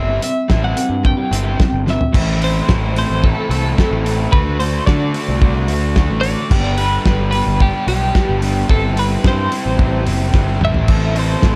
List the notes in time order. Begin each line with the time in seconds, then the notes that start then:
Already playing: G1 G3 C4 E4 E5
0.09 muted overdriven electric guitar stroke
0.21 G3 C4 E5, closed hi-hat
0.48 A1 G3 C4 E4, muted overdriven electric guitar stroke, kick, snare
0.62 G3 C4 E4 G4 F#5
0.76 G3 C4 E4 G4, closed hi-hat
0.90 G2
1.03 G3 C4 G5, muted overdriven electric guitar stroke, kick
1.17 G3 C4 E4 G4
1.31 G1 G3 C4 E4, closed hi-hat
1.43 G3 C4 E4 G4
1.59 G3 C4, kick, snare
1.70 G1, muted overdriven electric guitar stroke
1.86 G3 C4 E5, snare
2.01 floor tom
2.13 A1 A2 E3 A3 C4 E4, kick, crash
2.41 A2 E3 A3 C4 E4 C5, open hi-hat
2.68 A1 A2 E3 A3 C4 E4, kick, snare
2.95 A2 E3 A3 C4 E4 C5, open hi-hat
3.10 A1
3.23 A2 E3 A3 C4 E4 A4, kick
3.50 C2 A2 E3 A3 C4 E4 A4, open hi-hat
3.77 A2 E3 A3 C4 E4, kick, snare
3.91 A1
4.05 A2 E3 A3 C4 E4, open hi-hat
4.32 D2 D3 A3 D4 F#4 B4, kick
4.59 D3 A3 D4 F#4 C5, open hi-hat
4.87 D3 A3 D4 F#4 D5, kick, snare
5.14 D3 A3 D4 F#4, open hi-hat
5.29 C2
5.42 D3 A3 D4 F#4, kick
5.68 D2 D3 A3 D4 F#4, open hi-hat
5.96 D3 A3 D4 F#4, kick, snare
6.10 A1
6.21 D3 A3 D4 D5, open hi-hat
6.26 F#4
6.51 G1 G2 D3 G3 B3 D4 G4, kick, crash
6.78 G2 D3 G3 B3 D4 G4 B4, open hi-hat
7.06 G1 G2 D3 G3 B3 D4 G4, kick, snare
7.31 G2 D3 G3 B3 B4, open hi-hat
7.35 D4 G4
7.46 G1
7.60 G2 D3 G3 B3 D4 G4, kick
7.87 B1 G2 D3 G3 B3 D4 G4, open hi-hat
8.15 G2 D3 G3 B3 D4 G4, kick, snare
8.29 G1
8.42 G2 D3 G3 B3 D4 G4, open hi-hat
8.69 G1 G3 C4 E4 G4 A4, kick
8.97 G3 C4 E4 G4 B4, open hi-hat
9.24 G2 G3 C4 E4 G4 C5, kick, snare
9.52 G3 C4 E4 G4, open hi-hat
9.66 A1
9.79 G3 C4 E4 G4, kick
10.06 F#1 G3 C4 E4 G4, open hi-hat
10.33 G1 G3 C4 E4 G4, kick, snare
10.61 A1 G3 C4 E4 G4 E5, mid tom
10.74 floor tom
10.88 A1 A2 E3 A3 C4 E4 A4, kick, crash
11.15 A2 E3 A3 C4 E4 A4, open hi-hat
11.19 C5
11.41 A1 A2 E3 A3 C4 E4, kick, snare
11.46 A4